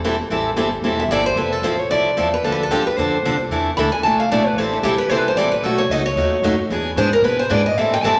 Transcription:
Already playing: upright bass E1
0.04 steel-string acoustic guitar E3 G3 C4 E4 A4
0.30 upright bass A1, steel-string acoustic guitar E3 G3 C4 E4 A4
0.56 upright bass G1, steel-string acoustic guitar E3 G3 C4 E4 A4
0.82 upright bass E1, steel-string acoustic guitar E3 G3 C4 E4 A4
1.00 steel-string acoustic guitar E5
1.09 upright bass G1, steel-string acoustic guitar E3 G3 C4 E4 A4 D5
1.26 steel-string acoustic guitar C5
1.36 upright bass F1, steel-string acoustic guitar F3 C4 E4 A4 B4
1.52 steel-string acoustic guitar A4
1.62 upright bass A1, steel-string acoustic guitar F3 C4 E4 A4 C5
1.80 steel-string acoustic guitar C#5
1.89 upright bass C2, steel-string acoustic guitar F3 C4 E4 A4 D5
2.17 upright bass E2, steel-string acoustic guitar F3 C4 E4 A4
2.34 steel-string acoustic guitar B4
2.44 upright bass D2, steel-string acoustic guitar D3 F3 C4 D4 A4
2.52 steel-string acoustic guitar B4
2.63 steel-string acoustic guitar A4
2.71 upright bass G2, steel-string acoustic guitar D3 F3 C4 D4 G4 A4
2.87 steel-string acoustic guitar B4, muted upright bass stroke
2.97 upright bass F2, steel-string acoustic guitar D3 F3 C4 D4 A4 C5
3.23 upright bass C2, steel-string acoustic guitar D3 F3 C4 D4 A4
3.50 upright bass E2, steel-string acoustic guitar E3 A3 D4 E4 A4
3.77 upright bass D2, steel-string acoustic guitar E3 A3 D4 E4 A4 B5
3.92 steel-string acoustic guitar G#5, muted upright bass stroke
4.02 upright bass C2, steel-string acoustic guitar E3 A3 D4 A5
4.06 steel-string acoustic guitar E4 A4
4.20 steel-string acoustic guitar F5
4.29 upright bass B1, steel-string acoustic guitar E3 A3 D4 E4 A4 D5
4.46 steel-string acoustic guitar B4
4.56 upright bass A1, steel-string acoustic guitar E3 G3 C4 E4 A4 C5
4.73 steel-string acoustic guitar E4
4.83 upright bass B1, steel-string acoustic guitar E3 G3 C4 E4 G4 A4
4.98 steel-string acoustic guitar B4, muted upright bass stroke
5.08 upright bass C2, steel-string acoustic guitar E3 G3 C4 E4 A4 C5
5.18 steel-string acoustic guitar B4
5.28 steel-string acoustic guitar C5
5.36 upright bass A1, steel-string acoustic guitar E3 G3 C4 E4 A4 D5
5.52 steel-string acoustic guitar B4
5.62 upright bass B1, steel-string acoustic guitar B2 F#3 A3 D#4 F#4 A4
5.78 steel-string acoustic guitar C#5
5.89 upright bass C#2, steel-string acoustic guitar B2 F#3 A3 D#4 F#4 D#5
6.06 steel-string acoustic guitar C#5
6.16 upright bass D#2, steel-string acoustic guitar B2 F#3 A3 D#4 F#4
6.42 upright bass F#2, steel-string acoustic guitar B2 F#3 A3 D#4 F#4
6.70 upright bass E2, steel-string acoustic guitar E3 B3 D4 G#4
6.96 upright bass G#2, steel-string acoustic guitar E3 B3 D4 G#4 C5
7.13 steel-string acoustic guitar A#4
7.22 upright bass B2, steel-string acoustic guitar E3 B3 D4 G#4 B4
7.39 steel-string acoustic guitar C5
7.50 upright bass G#2, steel-string acoustic guitar E3 B3 D4 G#4 D5
7.66 steel-string acoustic guitar D#5
7.75 upright bass A2, steel-string acoustic guitar E3 G3 C4 E4 A4 E5
7.93 steel-string acoustic guitar G5
8.03 upright bass G2, steel-string acoustic guitar E3 G3 C4 E4 A4 A5

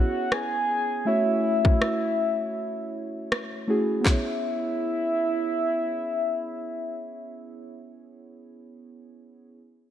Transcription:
Already playing: synth keys B3 C#4 E4 G#4 C#5, soft synth lead F#5
0.32 soft synth lead G#5, cross-stick
1.05 synth keys A3 C#4 E4 F#4 C#5, soft synth lead E5
1.64 synth keys A3 C#4 E4 F#4 C#5, kick
1.82 cross-stick
3.32 cross-stick
3.67 synth keys A3 C#4 E4 F#4 G#4
4.01 synth keys B3 C#4
4.06 synth keys E4, soft synth lead E5, kick, snare, clap
4.11 synth keys C#5

